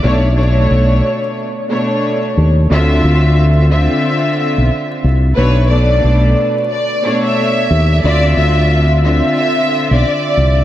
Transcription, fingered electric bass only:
X:1
M:4/4
L:1/16
Q:"Swing 16ths" 1/4=90
K:Bm
V:1 name="Fingered electric bass" clef=bass
B,,,4 B,,,2 z8 ^D,,2 | D,,2 D,,4- D,, z4 B,,, z2 =C,,2 | B,,,4 B,,,2 z8 ^D,,2 | D,,2 D,,4- D,, z4 B,,, z2 =C,,2 |]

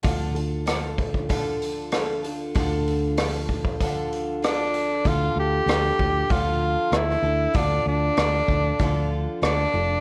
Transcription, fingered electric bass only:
X:1
M:4/4
L:1/8
Q:1/4=96
K:Dm
V:1 name="Fingered electric bass" clef=bass
D,,8 | D,,8 | D,, D,, D,, D,, D,,2 D,, D,, | D,, D,, D,, D,, D,,2 D,, F,,, |]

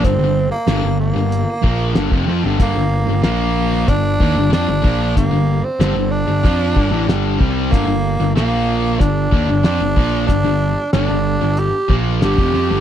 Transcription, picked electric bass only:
X:1
M:4/4
L:1/16
Q:1/4=94
K:Gm
V:1 name="Picked electric bass" clef=bass
G,,, G,,,2 z G,,, G,,,2 G,,,2 z B,,,2 G,,, F,,, F,, G,,, | G,,, G,,,2 G,,, B,,,4 G,,,2 E,, G,,, F,, G,,, B,,,2 | G,,, G,,,2 z G,,, G,,,2 G,,, F,,2 G,,, A,,, G,,,2 C,,2 | G,,, G,,,2 G,,, B,,,4 G,,,2 E,, G,,, F,, G,,, B,,,2 |
G,,, G,,,2 z G,,, G,,,2 G,,,2 z B,,,2 G,,, F,,, F,, G,,, |]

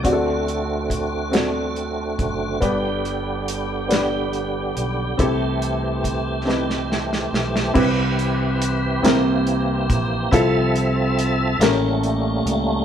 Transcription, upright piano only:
X:1
M:6/8
L:1/8
Q:3/8=47
K:C
V:1 name="Upright piano"
[CD^FGA]2 z [CDFA]2 z | [B,DGB]2 z [B,DGB]2 z | [CEGA]2 z [C_E=EGB]2 z | [CEGB]2 z [CEG_B]2 z |
[CEFA]2 z [^CGA_B]2 z |]
V:2 name="Upright piano" clef=bass
D,3 z3 | G,,3 z3 | C,3 z3 | C,3 C,3 |
C,3 A,,3 |]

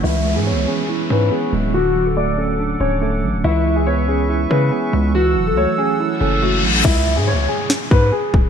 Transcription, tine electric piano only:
X:1
M:4/4
L:1/8
Q:1/4=141
K:C#phr
V:1 name="Tine electric piano"
E, G, B, C E C B, G, | D, F, A, C D C A, F, | E, G, B, C E C B, G, | E, F, A, C E C A, F, |
z8 |]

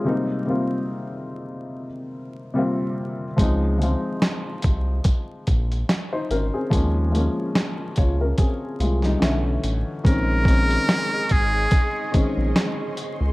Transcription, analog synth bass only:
X:1
M:4/4
L:1/16
Q:"Swing 16ths" 1/4=72
K:Bbdor
V:1 name="Analog synth bass" clef=bass
z16 | D,,3 z3 C,,2 z2 B,,,2 z2 A,,, z | E,,3 z3 D,,2 z2 C,,2 =B,,,2 =A,,, z | B,,,4 z2 A,,,2 z3 B,,, z3 D,, |]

